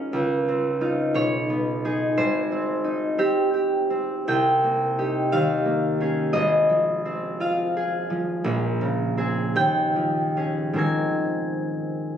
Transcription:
0.00 0.13 G#1 soft
0.00 2.21 C#4 soft
0.00 0.80 D#4 soft
0.00 0.80 F4 soft
0.00 0.14 A#4 medium
0.00 1.97 D#5 medium
0.00 0.92 F5 medium
0.13 1.18 C#2 soft
0.48 1.19 C4 soft
0.81 1.84 D#4 soft
0.81 1.18 F4 soft
1.14 2.20 B1 medium
1.14 2.21 C#5 medium
1.50 2.21 B3 soft
1.85 2.83 D#4 soft
1.85 4.35 G#4 soft
2.17 4.34 G#1 medium
2.17 5.38 C5 medium
2.52 3.17 C4 soft
2.84 4.98 D#4 soft
3.18 3.89 C4 soft
3.18 3.52 G4 medium
3.54 4.97 G4 soft
3.90 5.36 C4 soft
4.28 5.36 C2 medium
4.28 5.36 G5 medium
4.64 5.64 A#3 soft
4.99 8.48 D#4 soft
4.99 5.36 G4 soft
5.32 6.38 D#2 medium
5.32 7.40 F5 medium
5.65 6.37 A#3 soft
6.00 6.38 C#4 soft
6.00 7.76 G#4 soft
6.33 8.49 G#1 medium
6.33 8.48 D#5 medium
6.69 8.09 F3 soft
7.05 9.16 C4 soft
7.40 10.82 F4 medium
7.40 10.82 F5 medium
7.77 9.17 G#4 medium
8.10 9.95 F3 soft
8.44 9.60 A#1 medium
8.81 9.60 C#3 soft
9.17 9.60 C4 soft
9.17 10.36 G#4 soft
9.56 10.81 D#2 medium
9.56 11.65 G5 medium
9.96 10.81 F3 soft
10.37 10.82 C#4 soft
10.37 12.17 G#4 soft
10.73 12.17 G#2 medium
10.73 12.17 D#3 soft
10.73 12.17 C4 soft
10.73 12.17 A#4 soft
10.78 12.17 G#5 medium

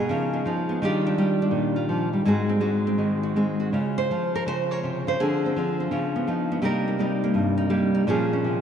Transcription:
0.00 0.82 G#4 medium
0.09 0.45 C#3 medium
0.09 0.44 F3 soft
0.09 0.32 B3 soft
0.09 0.46 D#4 soft
0.33 0.68 B3 soft
0.46 0.81 F3 medium
0.46 0.84 D#4 soft
0.69 0.80 B3 soft
0.82 2.25 D#3 medium
0.82 1.17 G3 medium
0.82 1.05 D4 medium
0.82 1.17 F4 medium
0.82 2.28 G4 medium
1.07 1.41 D4 medium
1.18 1.88 G3 medium
1.18 1.75 F4 medium
1.42 2.25 D4 medium
1.51 2.23 A#2 medium
1.76 2.24 F4 medium
1.89 2.13 F3 medium
2.13 2.25 G3 medium
2.25 3.71 G#2 medium
2.25 2.60 G#3 medium
2.25 2.49 C4 medium
2.25 2.60 F#4 medium
2.25 3.97 G#4 medium
2.49 2.87 C4 soft
2.60 3.36 G#3 medium
2.60 3.22 F#4 medium
2.87 3.36 C4 soft
2.98 3.71 D#3 medium
3.23 3.59 F#4 medium
3.36 4.10 G#3 medium
3.36 3.76 C4 soft
3.60 3.71 F#4 soft
3.73 4.10 C#3 medium
3.73 4.11 F4 soft
3.98 4.35 C5 medium
4.11 5.20 F3 medium
4.11 5.19 F4 soft
4.35 4.43 A#4 medium
4.46 5.06 C#3 medium
4.46 4.62 C5 medium
4.71 5.08 C#5 medium
4.83 5.07 C3 medium
5.07 5.20 C#3 medium
5.07 5.20 C5 medium
5.20 5.91 D3 medium
5.20 5.55 F3 soft
5.20 5.45 C4 soft
5.20 6.28 G#4 medium
5.46 5.57 C4 soft
5.56 5.91 F3 medium
5.56 5.79 C4 soft
5.80 5.91 C4 soft
5.91 6.28 C#3 medium
5.91 6.26 F3 soft
5.91 6.14 B3 soft
6.16 6.50 B3 soft
6.27 6.62 F3 medium
6.27 6.63 D#4 soft
6.52 6.63 B3 soft
6.62 8.07 C3 medium
6.62 6.98 G3 medium
6.62 6.87 A#3 medium
6.62 6.99 D#4 medium
6.62 8.09 A#4 medium
6.88 7.23 A#3 medium
6.99 7.68 G3 medium
6.99 7.56 D#4 medium
7.24 7.70 A#3 medium
7.34 8.07 G2 medium
7.58 7.93 D#4 medium
7.70 8.06 G3 medium
7.70 8.08 A#3 medium
7.95 8.06 D#4 medium
8.07 8.61 A#2 medium
8.07 8.61 F3 medium
8.07 8.32 C#4 medium
8.07 8.61 F4 medium
8.07 8.61 G#4 medium
8.33 8.61 C#4 soft
8.44 8.61 C3 medium

